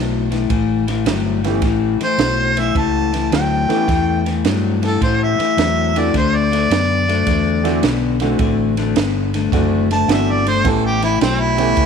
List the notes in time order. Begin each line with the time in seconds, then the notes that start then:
Already playing: B1 A2 F#3
0.31 A2 E3, snare, ride
0.50 A1 A2 E3, kick, ride
0.88 A2 E3, snare, ride
1.06 G1 A2 F#3, snare, ride
1.44 A2 E3 A3 B3 C#4 G4, snare, ride
1.62 A1 A2 E3, kick, snare, ride
2.00 A2 E3 C5, muted fingered electric bass stroke, snare, ride
2.18 B1 A2 F#3, snare, ride
2.57 A2 E3 E5, snare, ride
2.75 C#2 A2 E3 A5, kick, ride
3.13 A2 E3, snare, ride
3.32 D2 A2 F#3 G5, snare, ride
3.69 A2 E3 A3 B3 C#4 G4, muted fingered electric bass stroke, snare, ride
3.88 E2 A2 E3, kick, snare, ride
4.26 A2 E3, snare, ride
4.45 G2 A2 F#3, snare, ride
4.82 A2 E3 A4, snare, ride
5.01 A2 E3 C5, kick, snare, ride
5.24 E5
5.38 A2 E3, muted fingered electric bass stroke, snare, ride
5.57 E2 A2 F#3, snare, ride
5.96 A2 E3 A3 C4 D4 F#4 D5, snare, ride
6.14 D2 D3 A3 C5, kick, snare, ride
6.36 D5
6.52 D3 A3, snare, ride
6.70 F#2 D3 B3, snare, ride
7.08 D3 A3, snare, ride
7.27 E2 D3 A3, kick, snare, ride
7.64 D3 E3 A3 C4 D4 F#4, snare, ride
7.83 B1 D3 B3, snare, ride
8.20 D3 E3 A3 C4 D4 F#4, snare, ride
8.39 A1 D3 A3, kick, ride
8.77 D3 A3, snare, ride
8.95 G1 D3 B3, snare, ride
9.34 D3 A3, snare, ride
9.52 F#1 D3 E3 A3 C4 D4 F#4, kick, snare, ride
9.91 D3 A3 A5, snare, ride
10.08 G1 D3 E3 A3 B3 C4 D4 F#4, snare, ride
10.12 E5
10.30 D5
10.46 D3 A3 C5, snare, ride
10.64 A1 A2 E3 A3 B3 C#4 G4, kick, snare, ride
10.68 A4
10.86 G4
11.02 A2 E3 E4, snare, ride
11.21 B1 A2 F#3 C4, snare, ride
11.41 E4
11.57 A2 E3 A3 B3 C#4 G4, snare, ride
11.77 C#2 A2 E3, kick, ride